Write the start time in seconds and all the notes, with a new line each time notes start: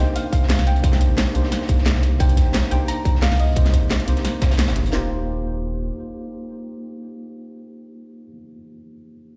Already playing: A#3 C4 D4
0.00 D#4 G4 C5 G5
0.16 F5, closed hi-hat
0.33 C2 F5, kick, closed hi-hat
0.43 snare
0.49 snare, closed hi-hat, open hi-hat
0.59 C2, snare
0.67 G5, closed hi-hat
0.76 closed hi-hat
0.82 C2 A#3 D4 D#4 G4 C5, kick, closed hi-hat
0.92 snare, closed hi-hat
1.00 closed hi-hat
1.10 A#1
1.18 snare, closed hi-hat
1.33 C2 A#3 D4 D#4 G4 C5, closed hi-hat
1.43 snare
1.52 snare, closed hi-hat
1.61 snare
1.69 C2, kick, closed hi-hat
1.78 snare
1.85 snare, closed hi-hat
1.95 C2, snare
2.03 closed hi-hat
2.18 C2 A#3 D4 D#4 G4 C5 G5, kick, closed hi-hat
2.29 closed hi-hat
2.37 kick, snare, closed hi-hat
2.46 A#1
2.53 snare, closed hi-hat
2.63 snare
2.70 C2 A#3 D4 D#4 G4 C5 G5, closed hi-hat
2.88 A#5, closed hi-hat
3.05 C2, kick, closed hi-hat
3.15 snare
3.22 F5, snare, closed hi-hat, open hi-hat
3.32 C2, snare
3.39 D#5, closed hi-hat
3.55 C2 A#3 C4 D#4 G4 C5, kick, closed hi-hat
3.65 snare, closed hi-hat
3.73 kick, closed hi-hat
3.83 A#1
3.90 snare, closed hi-hat
4.00 closed hi-hat
4.06 C2 A#3 C4 D#4 G4 C5, closed hi-hat
4.17 snare, closed hi-hat
4.25 snare, closed hi-hat
4.42 C2, kick, snare, closed hi-hat
4.51 snare, closed hi-hat
4.59 snare, closed hi-hat
4.68 G1, snare, closed hi-hat
4.76 closed hi-hat
4.86 closed hi-hat
4.90 D#1 A#3 D#4 F4 G4, snare
4.95 C5